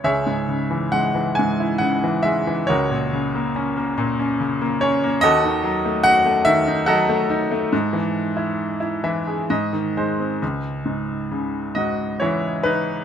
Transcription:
0.04 C#2 G#4 C#5 E5
0.26 G#2
0.48 C#3
0.71 E3
0.92 G#3 F#5
1.15 E3
1.35 G#2 G#5
1.60 E4
1.78 C#3 F#5
2.04 E3
2.23 G#3 E5
2.47 E3
2.67 C#2 F#4 A#4 C#5
2.90 A#2
3.13 C#3
3.35 A#3
3.56 C#4
3.77 A#3
3.98 A#2
4.19 C#4
4.40 C#3
4.61 A#3
4.81 C#4 C#5
5.04 A#3
5.21 D#2 F#4 A4 D#5
5.44 D#3
5.64 F#3
5.85 A3
6.04 F#4 F#5
6.26 A3
6.45 D#3 E5
6.67 D#4
6.86 F#3 A4 D#5 F#5
7.09 A3
7.30 D#4
7.51 A3
7.72 G#2
7.93 E3
8.37 E4
8.80 E4
9.04 E3 E5
9.27 G#4
9.50 G#2 D#5
9.73 D#3
9.97 G#3 C5
10.20 C4
10.42 C#2
10.85 G#2
11.31 C#3
11.75 G#2 F#4 D#5
12.20 E3 E4 C#5
12.63 D#4 B4

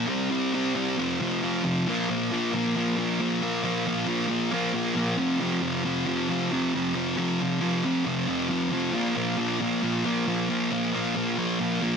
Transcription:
0.07 C3 G3 C4
0.30 C3 G3 C4
0.53 C3 G3 C4
0.75 C3 G3 C4
0.98 F2 C3 F3
1.21 F2 C3 F3
1.42 F2 C3 F3
1.64 F2 C3 F3
1.87 A#2 F3 A#3
2.09 A#2 F3 A#3
2.32 A#2 F3 A#3
2.54 A#2 F3 A#3
2.76 A#2 F3 A#3
2.98 A#2 F3 A#3
3.20 A#2 F3 A#3
3.42 A#2 F3 A#3
3.63 A#2 F3 A#3
3.86 A#2 F3 A#3
4.07 A#2 F3 A#3
4.28 A#2 F3 A#3
4.52 A#2 F3 A#3
4.74 A#2 F3 A#3
4.95 A#2 F3 A#3
5.17 F2 C3 F3
5.40 F2 C3 F3
5.61 F2 C3 F3
5.84 F2 C3 F3
6.06 F2 C3 F3
6.29 F2 C3 F3
6.52 F2 C3 F3
6.74 F2 C3 F3
6.95 F2 C3 F3
7.17 F2 C3 F3
7.40 F2 C3 F3
7.61 F2 C3 F3
7.84 F2 C3 F3
8.05 F2 C3 F3
8.27 F2 C3 F3
8.49 F2 C3 F3
8.72 F2 C3 F3
8.93 A#2 F3 A#3
9.15 A#2 F3 A#3
9.37 A#2 F3 A#3
9.60 A#2 F3 A#3
9.82 A#2 F3 A#3
10.05 A#2 F3 A#3
10.27 A#2 F3 A#3
10.49 A#2 F3 A#3
10.72 A#2 F3 A#3
10.93 A#2 F3 A#3
11.15 A#2 F3 A#3
11.37 A#2 F3 A#3
11.60 A#2 F3 A#3
11.81 A#2 F3 A#3

